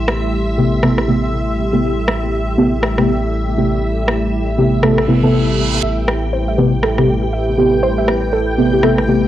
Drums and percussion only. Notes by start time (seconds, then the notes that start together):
0.08 cross-stick
0.83 cross-stick
0.98 cross-stick
2.08 cross-stick
2.83 cross-stick
2.98 cross-stick
4.08 cross-stick
4.83 cross-stick
4.98 cross-stick
6.08 cross-stick
6.83 cross-stick
6.98 cross-stick
8.08 cross-stick
8.83 cross-stick
8.98 cross-stick